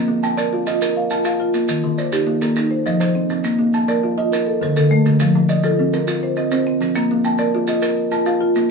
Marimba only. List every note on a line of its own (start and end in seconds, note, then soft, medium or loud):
0.00 0.23 A#3 medium
0.23 0.67 G5 medium
0.38 0.81 A#4 medium
0.38 0.67 D5 medium
0.67 0.96 F4 medium
0.97 1.24 F5 medium
1.11 1.39 F4 medium
1.26 1.69 F5 medium
1.40 1.69 F4 medium
1.69 1.98 D#3 medium
1.98 2.42 C5 medium
2.12 2.57 D#4 medium
2.12 2.42 G4 medium
2.41 2.56 A#3 medium
2.71 2.99 C5 medium
2.86 3.15 F3 medium
3.00 3.44 C5 medium
3.15 3.44 C4 medium
3.44 3.74 A#3 medium
3.88 4.32 A#4 medium
3.88 4.18 D5 medium
4.18 4.32 F4 medium
4.47 4.75 A4 medium
4.62 4.91 D3 medium
4.77 5.20 A4 medium
4.91 5.20 A3 medium
5.21 5.49 F3 medium
5.50 5.93 D5 medium
5.64 6.08 F4 medium
5.64 5.93 A4 medium
5.94 6.23 C4 medium
6.23 6.51 C5 medium
6.37 6.66 C4 medium
6.52 6.96 C5 medium
6.67 6.96 C4 medium
6.96 7.25 A#3 medium
7.25 7.68 G5 medium
7.39 7.83 A#4 medium
7.39 7.68 D5 medium
7.68 7.97 F4 medium
8.11 8.39 F4 medium
8.26 8.70 F5 medium
8.41 8.70 F4 medium